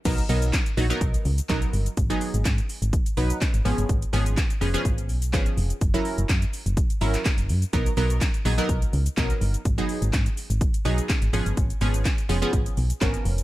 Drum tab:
CC |x---------------|----------------|----------------|----------------|
HH |xxoxxxoxxxoxxxox|xxoxxxoxxxoxxxox|xxoxxxoxxxoxxxox|xxoxxxoxxxoxxxox|
SH |xxxxxxxxxxxxxxxx|xxxxxxxxxxxxxxxx|xxxxxxxxxxxxxxxx|xxxxxxxxxxxxxxxx|
CP |----x-------x---|----x-------x---|----x-------x---|----x------xx---|
SD |----o-------o---|----o-------o---|----o-------o---|----o-------o---|
BD |o---o---o---o---|o---o---o---o---|o---o---o---o---|o---o---o---o---|

CC |----------------|----------------|----------------|
HH |xxoxxxoxxxoxxxox|xxoxxxoxxxoxxxox|xxoxxxoxxxoxxxox|
SH |xxxxxxxxxxxxxxxx|xxxxxxxxxxxxxxxx|xxxxxxxxxxxxxxxx|
CP |----x-------x---|----x-------x---|----x-------x---|
SD |----o-------o---|----o-------o---|----o-------o---|
BD |o---o---o---o---|o---o---o---o---|o---o---o---o---|